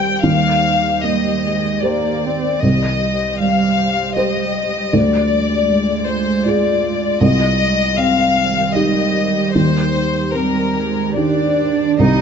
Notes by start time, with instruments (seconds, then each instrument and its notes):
Already playing: felt piano C2 G3 G4 C5, ambient pad D#3 G4 C5, cello G3, violin section G5
0.22 felt piano D#2, cello G3, violin section F5
1.03 cello G3, felt piano A#3, violin section D#5
1.45 cello G#3
1.82 cello A#3, felt piano G4 C5, violin section D5
2.26 cello C4
2.61 felt piano C2, ambient pad G3 G4 C5, cello G3, violin section D#5
3.40 felt piano G3, violin section F5
4.16 felt piano G4 C5, violin section D#5
4.93 felt piano D2, ambient pad G#3 F4 D5, cello G#3, violin section D5
5.69 felt piano G#3
6.08 violin section C5
6.46 felt piano F4 G#4, violin section D5
7.21 felt piano C2, ambient pad D#3 G4 C5, cello G3, violin section D#5
7.98 felt piano C4, violin section F5
8.75 felt piano D#4 G4, violin section D#5
9.55 felt piano D#2, violin section C5
10.34 cello G3, felt piano C4, violin section A#4
10.78 cello G#3
11.16 felt piano D#3 G4, cello D4, violin section D5
11.98 felt piano C2, ambient pad G3 G4 C5, viola G3, cello D#4, violin section D#5